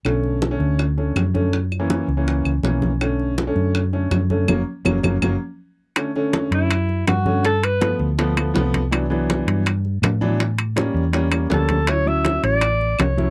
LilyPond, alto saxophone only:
\new Staff \with { instrumentName = "Alto saxophone" } { \time 4/4 \key fis \phrygian \tempo 4 = 162 r1 | r1 | r1 | r1 |
\key d \major r4. e'4. fis'4 | a'8 b'4 r2 r8 | r1 | r2. a'4 |
cis''8 e''4 d''4. cis''4 | }